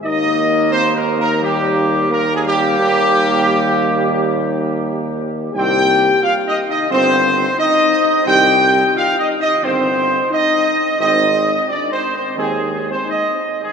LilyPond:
<<
  \new Staff \with { instrumentName = "Trumpet section" } { \time 4/4 \key ees \major \tempo 4 = 87 ees''4 \tuplet 3/2 { c''8 bes'8 bes'8 } g'4 \tuplet 3/2 { bes'8 aes'16 g'8.~ } | g'2.~ g'8 r8 | g''4 \tuplet 3/2 { f''8 ees''8 ees''8 } c''4 ees''4 | g''4 \tuplet 3/2 { f''8 ees''8 ees''8 } c''4 ees''4 |
ees''4 \tuplet 3/2 { d''8 c''8 c''8 } aes'8. c''16 ees''8. aes'16 | }
  \new Staff \with { instrumentName = "French horn section" } { \time 4/4 \key ees \major ees'4 \tuplet 3/2 { c'8 bes8 bes8 } g4 \tuplet 3/2 { bes8 aes16 g8.~ } | g2.~ g8 r8 | g'4 \tuplet 3/2 { f'8 ees'8 ees'8 } c'4 ees'4 | g'4 \tuplet 3/2 { f'8 ees'8 ees'8 } c'4 ees'4 |
ees'4 \tuplet 3/2 { d'8 c'8 c'8 } aes8. c'16 ees'8. aes16 | }
  \new Staff \with { instrumentName = "Trombone section" } { \clef bass \time 4/4 \key ees \major <ees bes>2 <ees bes>4 <ees bes>4~ | <ees bes>1 | <ees c'>8 r4. <ees c'>8 r4. | <ees c'>8 r4. <ees c'>8 r4. |
<ees c'>8 r4. <ees c'>8 r4. | }
  \new Staff \with { instrumentName = "Tuba" } { \clef bass \time 4/4 \key ees \major ees,1 | ees,1 | c,4 r4 g,,4 r4 | c,4 r4 g,,4 r4 |
aes,,4 r4 ees,4 r4 | }
>>